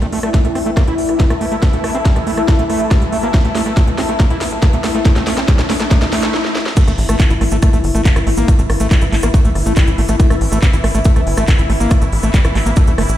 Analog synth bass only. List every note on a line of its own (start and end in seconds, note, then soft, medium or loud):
0.02 0.09 A1 medium
0.13 0.20 A1 loud
0.23 0.31 A1 medium
0.45 0.52 A1 medium
0.55 0.63 A1 loud
0.66 0.73 A1 medium
0.87 0.95 A#1 medium
0.98 1.06 A1 medium
1.09 1.16 A1 medium
1.30 1.38 A1 medium
1.41 1.48 A1 loud
1.52 1.59 A1 medium
1.73 1.81 A1 medium
1.84 1.91 A1 loud
1.95 2.02 A1 medium
2.16 2.23 A1 medium
2.27 2.34 A1 loud
2.37 2.45 A1 medium
2.59 2.66 A#1 medium
2.70 2.77 A1 loud
2.80 2.88 A1 medium
3.02 3.09 A1 medium
3.12 3.20 A1 loud
3.23 3.31 A1 medium
3.45 3.52 A1 medium
3.55 3.63 A1 loud
3.66 3.73 A1 medium
3.87 3.95 A1 medium
3.98 4.06 A1 loud
4.09 4.16 A1 medium
4.30 4.38 A#1 medium
4.41 4.48 A1 loud
4.52 4.59 A1 medium
4.73 4.81 A1 medium
4.84 4.91 A1 loud
4.95 5.02 A1 medium
5.16 5.23 A1 medium
5.27 5.34 A1 loud
5.37 5.45 A1 medium
5.59 5.66 A1 medium
5.70 5.77 A1 loud
5.80 5.88 A1 loud
6.02 6.09 A#1 medium
6.12 6.20 A1 loud
6.23 6.31 A1 medium
6.88 6.95 A1 medium
6.98 7.06 A1 loud
7.09 7.16 A1 medium
7.30 7.38 A1 medium
7.41 7.48 A1 loud
7.52 7.59 A1 medium
7.73 7.81 A#1 medium
7.84 7.91 G1 loud
7.95 8.02 A1 medium
8.16 8.23 A1 medium
8.27 8.34 A1 loud
8.37 8.45 A1 medium
8.59 8.66 A1 medium
8.70 8.77 A1 loud
8.80 8.88 A1 medium
9.02 9.09 A1 medium
9.12 9.20 A1 medium
9.23 9.31 A1 medium
9.45 9.52 A#1 medium
9.55 9.63 G1 loud
9.66 9.73 A1 medium
9.87 9.95 A1 medium
9.98 10.06 A1 loud
10.09 10.16 A1 medium
10.30 10.38 A1 medium
10.41 10.48 A1 loud
10.52 10.59 A1 medium
10.73 10.81 A1 medium
10.84 10.91 A1 loud
10.95 11.02 A1 loud
11.16 11.23 A#1 medium
11.27 11.34 G1 loud
11.37 11.45 A1 medium
11.59 11.66 A1 medium
11.70 11.77 A1 loud
11.80 11.88 A1 medium
12.02 12.09 A1 medium
12.12 12.20 A1 loud
12.23 12.31 A1 medium
12.45 12.52 A1 medium
12.55 12.63 A1 loud
12.66 12.73 A1 loud
12.87 12.95 A#1 medium
12.98 13.06 G1 medium
13.09 13.16 A1 medium